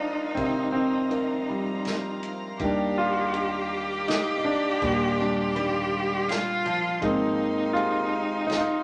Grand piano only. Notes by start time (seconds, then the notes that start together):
Already playing: F3 A#3 D4 D#4 F4 A#4
0.35 C3 D#3 C4
0.72 D#3 C4
1.10 D#4 F4 A#4
2.60 D#3 G3 D4
2.98 F4
3.33 D4 D#4 G4
4.08 D#4
4.37 D#4
4.44 D4
4.82 A#2
5.20 G3 D4
5.55 D#3 D4 G4
7.02 G#3 D#4
7.06 C4
7.73 F4 G4 G#4 C5
8.46 D#4
8.57 D#4 F4